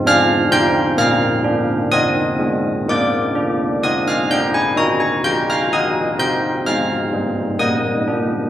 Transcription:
\new Staff \with { instrumentName = "Church bells" } { \time 3/4 \key bes \mixolydian \tempo 4 = 63 << { <f'' f'''>8 <g'' g'''>8 <f'' f'''>4 <ees'' ees'''>4 | <d'' d'''>4 <ees'' ees'''>16 <f'' f'''>16 <g'' g'''>16 aes''16 bes''16 aes''16 <g'' g'''>16 <f'' f'''>16 | <ees'' ees'''>8 <g'' g'''>8 <f'' f'''>4 <ees'' ees'''>4 | } \\ { d'8 c'8 bes8 d'8 c'8 aes8 | bes8 d'8 c'8 d'8 ees'8 f'8 | ees'8 c'8 aes8 g8 bes8 d'8 | } >> }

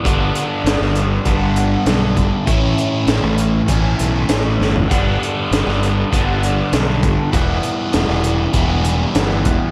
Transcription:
<<
  \new Staff \with { instrumentName = "Overdriven electric guitar" } { \clef bass \time 4/4 \key g \lydian \tempo 4 = 99 <g, d g b d'>2 <g, d g b d'>2 | <a, e a cis' e'>2 <a, e a cis' e'>2 | <g, d g b d'>2 <g, d g b d'>2 | <e g b e'>2 <e g b e'>2 | }
  \new Staff \with { instrumentName = "Fingered electric bass" } { \clef bass \time 4/4 \key g \lydian g,,8 r8 g,,16 g,,8. g,,4 b,,8 g,,16 r16 | a,,8 r8 a,,16 a,,8. a,,8 b,,8 a,,8 g,,8 | g,,8 r8 g,,16 g,,8. g,,4 b,,8 g,,16 r16 | e,,8 r8 e,,16 e,,8. e,,4 g,,8 e,,16 r16 | }
  \new DrumStaff \with { instrumentName = "Drums" } \drummode { \time 4/4 <hh bd>8 hh8 <hh sn>16 sn16 hh8 <hh bd>8 hh8 <hh sn>8 <hh bd>8 | <hh bd>8 hh8 <hh sn>8 hh8 <hh bd>8 hh8 <hh sn>8 sn16 tomfh16 | <hh bd>8 hh8 <hh sn>16 sn16 hh8 <hh bd>8 hh8 <hh sn>8 <hh bd>8 | <hh bd>8 hh8 <hh sn>16 sn16 hh8 <hh bd>8 hh8 <hh sn>8 <hh bd>8 | }
>>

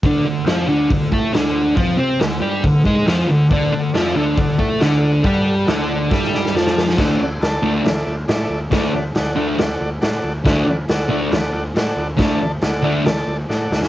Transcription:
<<
  \new Staff \with { instrumentName = "Transistor combo organ" } { \time 4/4 \key c \lydian \tempo 4 = 138 r1 | r1 | <a' d'' fis''>8 r8 <a' d'' e''>8 r8 <a' d'' fis''>8 r8 <a' d'' fis''>8 r8 | <a' d'' fis''>8 r8 <a' d'' fis''>8 r8 <a' d'' e''>8 r8 <a' d'' a''>8 r8 |
<a' d'' fis''>8 r8 <a' d'' a''>8 r8 <a' d'' e''>8 r8 <a' d'' e''>8 r8 | <a' d'' fis''>8 r8 <a' d'' fis''>8 r8 <a' d'' fis''>8 r8 <a' d'' fis''>8 r8 | <a' d'' fis''>8 r8 <a' d'' fis''>8 r8 <a' d'' fis''>8 r8 <a' d'' fis''>8 r8 | <a' d'' a''>8 r8 <a' d'' fis''>8 r8 <a' d'' a''>8 r8 <a' d'' fis''>8 r8 | }
  \new Staff \with { instrumentName = "Distorted electric guitar" } { \time 4/4 \key c \lydian <d d'>8 d8 <f f'>8 <d d'>8 d8 <a a'>8 <d d'>4 | <f f'>8 <c' c''>8 d8 <g g'>8 d8 <gis gis'>8 <f f'>8 d8 | <d d'>8 d8 <f f'>8 <d d'>8 d8 <a a'>8 <d d'>4 | <g g'>4 <d d'>4 <g g'>4 <f f'>4 |
<d a d'>8 r4 <d a d'>8 r2 | <d a d'>8 r4 <d a d'>8 r2 | <d a d'>8 r4 <d a d'>8 r2 | <d a d'>8 r4 <d a d'>8 r2 | }
  \new Staff \with { instrumentName = "Picked electric bass" } { \clef bass \time 4/4 \key c \lydian d,8 d,8 f,8 d,8 d,8 a,8 d,4 | f,8 c8 d,8 g,8 d,8 gis,8 f,8 d,8 | d,8 d,8 f,8 d,8 r8 a,8 d,4 | g,4 d,4 g,4 f,4 |
d,8 d,8 d,8 d,8 d,8 d,8 a,8 d,8 | d,8 d,8 d,8 d,8 d,8 d,8 a,8 d,8 | d,8 d,8 d,8 d,8 d,8 d,8 a,8 d,8 | d,8 d,8 d,8 d,8 d,8 d,8 a,8 d,8 | }
  \new DrumStaff \with { instrumentName = "Drums" } \drummode { \time 4/4 <hho bd>4 <hho sn>4 <hho bd>8 bd8 <hho sn>4 | <hho bd>4 <hho sn>4 <hho bd>8 bd8 <hho sn>4 | <hho bd>4 <hho sn>4 <hho bd>8 bd8 <hho sn>4 | <hho bd>4 <hho sn>4 <bd sn>16 sn16 sn16 sn16 sn16 sn16 sn16 sn16 |
<cymc bd sn>4 <hho sn>4 <hho sn>4 <hho sn>4 | <hho bd sn>4 <hho sn>4 <hho sn>4 <hho sn>4 | <hho bd sn>4 <hho sn>4 <hho sn>4 <hho sn>4 | <hho bd sn>4 <hho sn>4 <hho sn>4 sn8 sn16 sn16 | }
>>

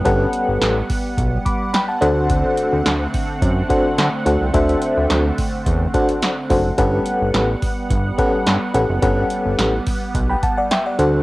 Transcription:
<<
  \new Staff \with { instrumentName = "FM electric piano" } { \time 4/4 \key g \lydian \tempo 4 = 107 << { r2 r8 <b'' d'''>8 <g'' b''>16 <fis'' a''>8 r16 | r1 | r1 | r1 |
r2 r16 <g'' b''>16 <fis'' a''>16 <d'' fis''>16 <e'' g''>16 <d'' fis''>8 r16 | } \\ { <cis' g' a' b' fis''>4~ <cis' g' a' b' fis''>16 r2 r16 <d' fis' a' c'' fis''>8~ | <d' fis' a' c'' fis''>4 r4. <d' fis' a' c'' fis''>8 r8 <d' fis' a' c'' fis''>8 | <d' fis' a' c'' e''>4~ <d' fis' a' c'' e''>16 r4 r16 <d' fis' a' c'' fis''>8 r8 <d' fis' a' c'' fis''>8 | <cis' g' a' b' fis''>4~ <cis' g' a' b' fis''>16 r4 r16 <cis' g' a' b' fis''>8 r8 <cis' g' a' b' fis''>8 |
<cis' g' a' b' fis''>4~ <cis' g' a' b' fis''>16 r2 r16 <d' fis' a' c'' fis''>8 | } >> }
  \new Staff \with { instrumentName = "Analog synth pad" } { \time 4/4 \key g \lydian << { fis''1~ | fis''1~ | fis''1 | fis''1~ |
fis''2.~ fis''8 fis'8 | } \\ { <g b>2.~ <g b>8 <d a c'>8~ | <d a c'>1~ | <d a c'>1 | <g b>1~ |
<g b>2.~ <g b>8 <d a c'>8 | } >> }
  \new Staff \with { instrumentName = "Analog synth bass" } { \clef bass \time 4/4 \key g \lydian g,,8 r16 g,,16 a,,8 r8 b,,8 r4 d,8~ | d,8 r16 d,16 d,8 r8 fis,8 r8 d16 r16 d,16 c,16 | d,8 r16 d,16 d,8 r8 e,8 r4 fis,,8 | g,,8 r16 g,,16 a,,8 r8 g,,8 r8 g,16 r16 a,,16 fis,,16 |
g,,8 r16 g,,16 a,,8 r8 b,,8 r4 d,8 | }
  \new DrumStaff \with { instrumentName = "Drums" } \drummode { \time 4/4 <hh bd>8 hh8 <hc hh sn>8 <hho bd>8 <hh bd>8 <hh bd>8 <hc hh sn>8 hh8 | <hh bd>8 hh8 <hc hh sn>8 <hho bd>8 <hh bd>8 <hh bd>8 <hc hh sn>8 hh8 | <hh bd>16 hh16 hh8 <hc hh sn>8 <hho bd>8 <hh bd>8 <hh bd>16 hh16 <hc hh sn>8 <hho bd>8 | <hh bd>8 hh8 <hc hh sn>8 <hho bd>8 <hh bd>8 <hh bd>8 <hc hh sn>8 hh8 |
<hh bd>8 hh8 <hc hh sn>8 <hho bd>8 <hh bd>8 <hh bd>8 <hc hh sn>8 hh8 | }
>>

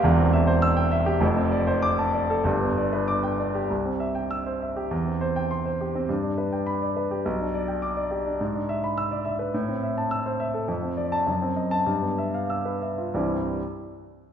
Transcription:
\new Staff \with { instrumentName = "Grand piano" } { \time 2/4 \key c \major \tempo 4 = 101 << { r4 e'''8 r8 | r4 d'''8 r8 | r4 d'''8 r8 | r4 e'''8 r8 |
r4 c'''8 r8 | r4 b''8 r8 | r4 d'''8 r8 | r4 e'''8 r8 |
r4 e'''8 r8 | r8. a''16 r8. a''16 | r4 e'''8 r8 | <c, g, e g c' e'>8 r4. | } \\ { <e,, e,>16 c'16 e''16 c''8 g''16 e''16 g'16 | <f,, f,>16 c'16 d''16 c''8 a''16 d''16 a'16 | <g,, g,>16 b16 d''16 b'8 g''16 d''16 g'16 | c,16 c'16 e''16 g''8 c''16 e''16 g'16 |
e,16 c'16 c''16 g''8 c''16 g'16 c'16 | g,16 d'16 b'16 g''8 d''16 b'16 g'16 | b,,16 d'16 d''16 g''8 d''16 g'16 d'16 | gis,16 d'16 e''16 b''8 d''16 e''16 b'16 |
a,16 c'16 e''16 a''8 c''16 e''16 a'16 | f,16 c'16 d''8 fis,16 c'16 dis''8 | g,16 b16 e''16 f''8 b'16 e''16 f'16 | r2 | } >> }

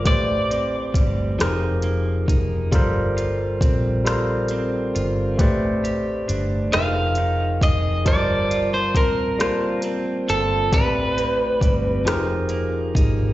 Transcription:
<<
  \new Staff \with { instrumentName = "Clean electric guitar" } { \time 6/8 \key a \phrygian \tempo 4. = 45 d''2~ d''8 r8 | r2. | r4. f''4 ees''8 | d''8. c''16 bes'4 r8 a'8 |
b'4. r4. | }
  \new Staff \with { instrumentName = "Tine electric piano" } { \time 6/8 \key a \phrygian <a g' b' c'' d''>4. <f ees' g' aes' bes'>4. | <g f' a' bes' c''>4. <g f' a' bes' c''>4. | <a g' b' c'' d''>4. <f ees' aes' bes' g''>4. | <g f' bes' c'' a''>4. <g bes f' c'' a''>4. |
<a c' g' b' d''>4. <f ees' g' aes' bes'>4. | }
  \new Staff \with { instrumentName = "Clean electric guitar" } { \time 6/8 \key a \phrygian a,8 c'8 g8 f8 bes8 ees'8 | g8 f'8 c'8 f'8 c'8 f'8 | a8 g'8 d'8 f8 ees'8 aes'8 | g8 f'8 c'8 f'8 c'8 f'8 |
a,8 c'8 g8 f8 bes8 ees'8 | }
  \new Staff \with { instrumentName = "Fingered electric bass" } { \clef bass \time 6/8 \key a \phrygian a,,4 g,,8 f,,4 f,,8 | g,,4 bes,,4. g,,8 | a,,4 g,,8 f,,4 f,,8 | g,,4 bes,,4. g,,8 |
a,,4 g,,8 f,,4 aes,,8 | }
  \new DrumStaff \with { instrumentName = "Drums" } \drummode { \time 6/8 <hh bd>8 hh8 <hh bd>8 <hh ss>8 hh8 <hh bd>8 | <hh bd>8 hh8 <hh bd>8 <hh ss>8 hh8 hh8 | <hh bd>8 hh8 hh8 <hh ss>8 hh8 <hh bd>8 | <hh bd>8 hh8 <hh bd>8 <hh ss>8 hh8 hh8 |
<hh bd>8 hh8 <hh bd>8 <hh ss>8 hh8 <hh bd>8 | }
>>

